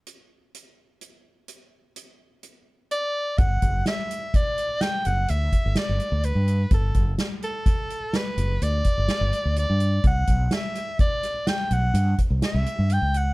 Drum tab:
HH |x-x-x-x-x-x-x-|xxxxxxxxxxxxxx|xxxxxxxxxxxxxx|xxxxxxxxxxxxxx|
SD |--------------|--o---o---o---|--o---o---o---|--oo-oo---o---|
BD |--------------|oo--o----o----|oo--o----o----|oo--o----o----|